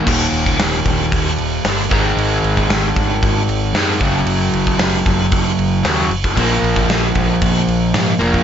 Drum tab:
CC |x-x-x-x-x-x-x-x-|x-x-x-x-x-x-x-x-|x-x-x-x-x-x-x-x-|x-x-x-x-x-x-x-x-|
SD |----o-------o---|----o-------o---|----o-------o---|----o-------o---|
BD |o--o--o-o-----o-|---o--o-o-----o-|---o--o-o------o|o--o--o-o------o|